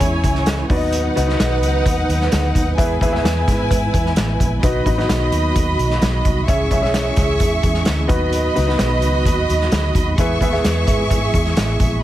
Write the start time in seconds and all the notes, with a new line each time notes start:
Already playing: E3 G#3 C#4 E4 C#5 G#5
0.00 E2, kick, closed hi-hat
0.24 C#2, kick, closed hi-hat
0.35 snare
0.46 snare, closed hi-hat
0.68 D#2 D#3 F#3 B3 D#4 F#4 B4 D5 F#5, kick, open hi-hat
0.76 D#5
0.93 closed hi-hat
1.15 C#2 B3 D#4 F#4 B4 D#5, closed hi-hat
1.27 B3 D#4 F#4 B4 D#5, snare
1.40 B1, snare, closed hi-hat
1.62 C#2, closed hi-hat
1.86 D#2, kick, closed hi-hat
2.09 D#2, closed hi-hat
2.20 snare
2.32 D2, snare, closed hi-hat
2.55 D#2, kick, closed hi-hat
2.77 E2 E3 G#3 B3 E4 G#4 B4 E5 G#5, kick, closed hi-hat
3.01 D#2 B3 E4 G#4 B4 E5, kick, closed hi-hat
3.12 B3 E4 G#4 B4 E5, snare
3.24 E2, snare, closed hi-hat
3.48 G#2, kick, snare, closed hi-hat
3.71 G#2, kick, closed hi-hat
3.94 E2, kick, closed hi-hat
4.05 snare
4.16 A1, snare, closed hi-hat
4.40 A#1, kick, closed hi-hat
4.63 B1 D#3 F#3 B3 D#4 F#4 B4 D#5 B5, kick, closed hi-hat
4.85 A1 B3 D#4 F#4 B4 D#5, kick, closed hi-hat
4.97 B3 D#4 F#4 B4 D#5, snare
5.09 B1, snare, closed hi-hat
5.31 D#2, closed hi-hat
5.56 D#2, kick, closed hi-hat
5.79 B1, closed hi-hat
5.90 snare
6.02 B1, snare, closed hi-hat
6.25 C2, kick, closed hi-hat
6.47 C#2 E3 G#3 C#4 E4 G#4 C#5 E5 C#6, kick, closed hi-hat
6.71 B1 C#4 E4 G#4 C#5 E5, kick, closed hi-hat
6.82 C#4 E4 G#4 C#5 E5, snare
6.94 snare, closed hi-hat
7.16 C#2, kick, snare, closed hi-hat
7.40 E2, kick, closed hi-hat
7.63 E2, kick, closed hi-hat
7.74 snare
7.85 D2, snare, closed hi-hat
8.07 D#2 D#3 F#3 B3 D#4 F#4 B4 D#5 B5, kick, closed hi-hat
8.33 closed hi-hat
8.55 C#2 B3 D#4 F#4 B4 D#5, closed hi-hat
8.67 B3 D#4 F#4 B4 D#5, snare
8.79 B1, snare, closed hi-hat
9.02 C#2, closed hi-hat
9.25 D#2, kick, closed hi-hat
9.49 D#2, closed hi-hat
9.60 snare
9.72 D2, snare, closed hi-hat
9.95 D#2, kick, closed hi-hat
10.17 E2 E3 G#3 B3 E4 G#4 B4 E5 C#6, kick, closed hi-hat
10.41 D#2 B3 E4 G#4 B4 E5, kick, closed hi-hat
10.52 B3 E4 G#4 B4 E5, snare
10.64 E2, snare, closed hi-hat
10.87 G#2, kick, snare, closed hi-hat
11.11 G#2, kick, closed hi-hat
11.34 E2, kick, closed hi-hat
11.45 snare
11.56 A1, snare, closed hi-hat
11.80 A#1, kick, closed hi-hat